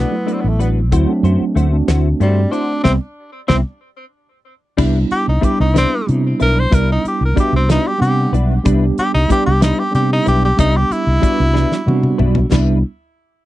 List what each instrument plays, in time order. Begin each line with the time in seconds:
Already playing: clean electric guitar A3 D4 F#4 B4
0.00 tenor saxophone B3
0.11 tine electric piano F#3 A3 B3 E4
0.26 clean electric guitar A3 D4 F#4 B4, closed hi-hat
0.33 tenor saxophone C4
0.41 fretless electric bass A1, tenor saxophone B3
0.49 tenor saxophone A3
0.59 tenor saxophone B3, clean electric guitar D4 F#4 B4, closed hi-hat
0.92 fretless electric bass D2, tine electric piano F#3 A3 C4 E4, clean electric guitar A3 E4 F#4 C5, kick, closed hi-hat
1.07 tine electric piano F#3 A3 C4 D4
1.23 fretless electric bass F#2, clean electric guitar E4 F#4 C5, closed hi-hat
1.41 muted fretless electric bass stroke
1.55 fretless electric bass D2, clean electric guitar A3 E4 F#4 C5, closed hi-hat
1.71 tine electric piano A3 C4 D4 F#4
1.88 fretless electric bass D2, clean electric guitar A3 E4 F#4 C5, snare, closed hi-hat
2.20 fretless electric bass G2, tenor saxophone G3, clean electric guitar A3 E4 F#4 C5, closed hi-hat
2.52 tenor saxophone D4, clean electric guitar E4 F#4 C5, closed hi-hat
2.83 fretless electric bass C2, tine electric piano G3 B3 C4, clean electric guitar C4 E4 G4, tenor saxophone C4, kick, snare
3.48 fretless electric bass C2, tine electric piano G3 B3 C4, tenor saxophone C4, clean electric guitar C4 E4 G4, kick, snare
4.77 fretless electric bass C2, clean electric guitar G3 D4 E4 B4, tine electric piano G3 B3 D4 E4, kick, crash
5.11 tenor saxophone G4, muted fretless electric bass stroke, closed hi-hat
5.28 fretless electric bass C2, tenor saxophone D#4
5.41 clean electric guitar G3 D4 E4 B4, tine electric piano G3 B3 D4 E4, tenor saxophone G4, kick, closed hi-hat
5.60 fretless electric bass C2, tenor saxophone D#4
5.74 clean electric guitar G3 D4 E4 B4, tenor saxophone C4, snare, closed hi-hat
6.07 fretless electric bass C3, tine electric piano G3 B3 D4 E4, closed hi-hat
6.40 fretless electric bass B1, clean electric guitar D4 E4 B4, tenor saxophone A#4, closed hi-hat
6.59 tenor saxophone C5
6.70 fretless electric bass C2, tine electric piano G3 B3 D4 E4, clean electric guitar G3 D4 E4 B4, tenor saxophone A#4, kick, closed hi-hat
6.92 tenor saxophone D#4
7.05 tenor saxophone G4, muted fretless electric bass stroke, closed hi-hat
7.21 fretless electric bass C2
7.25 tenor saxophone A#4
7.34 tine electric piano G3 B3 D4 F#4, clean electric guitar G3 D4 E4 B4, muted fretless electric bass stroke, kick, closed hi-hat
7.40 tenor saxophone G4
7.53 fretless electric bass C2, tenor saxophone C4
7.69 clean electric guitar G3 D4 E4 B4, tenor saxophone D#4, snare, closed hi-hat
7.87 tenor saxophone G4
7.98 fretless electric bass C3, tine electric piano G3 B3 D4 F#5, tenor saxophone G4
8.02 closed hi-hat
8.32 fretless electric bass B1, clean electric guitar D4 E4 B4, closed hi-hat
8.64 fretless electric bass C2, tine electric piano G3 B3 D4 G4, clean electric guitar G3 D4 E4 B4, kick, closed hi-hat
8.98 tenor saxophone G4, muted fretless electric bass stroke, closed hi-hat
9.14 fretless electric bass C2, tenor saxophone D#4
9.28 tine electric piano G3 B3 D4 G4, clean electric guitar G3 D4 E4 B4, tenor saxophone G4, kick, closed hi-hat
9.46 fretless electric bass C2, tenor saxophone G4
9.61 clean electric guitar G3 D4 E4 B4, tenor saxophone D#4, snare, closed hi-hat
9.79 tenor saxophone G4
9.91 fretless electric bass C3, tine electric piano G3 B3 D4 G4, tenor saxophone G4, closed hi-hat
10.13 tenor saxophone D#4
10.26 fretless electric bass B1, clean electric guitar D4 E4 B4, tenor saxophone G4, closed hi-hat
10.45 tenor saxophone G4
10.56 fretless electric bass C2, tine electric piano G3 B3 D4 G4, clean electric guitar G3 D4 E4 B4, kick, closed hi-hat
10.60 tenor saxophone D#4
10.77 tenor saxophone G4
10.90 tenor saxophone E4, muted fretless electric bass stroke, closed hi-hat
11.07 fretless electric bass C2
11.20 tine electric piano G3 B3 D4 F#4, clean electric guitar G3 D4 E4 B4, kick, closed hi-hat
11.40 fretless electric bass C2
11.54 clean electric guitar G3 D4 E4 B4, snare
11.72 snare
11.86 fretless electric bass C3, tine electric piano G3 B3 D4 F#4, high tom
12.03 mid tom
12.18 fretless electric bass B1, clean electric guitar D4 E4 B4, mid tom
12.35 floor tom
12.51 fretless electric bass C2, clean electric guitar G3 D4 E4 B4, tine electric piano G3 B3 D4 E4, snare, floor tom, crash